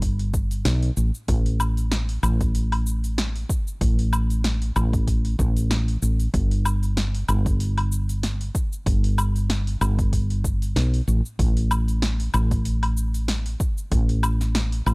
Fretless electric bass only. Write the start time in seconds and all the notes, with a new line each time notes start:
Already playing: G1
0.65 B1
0.97 A1
1.29 A1
2.23 A1
3.81 A1
4.76 A1
5.39 A1
6.02 A1
6.34 G1
7.29 G1
8.86 G1
9.81 G1
10.76 B1
11.08 A1
11.39 A1
12.34 A1
13.92 A1
14.86 A1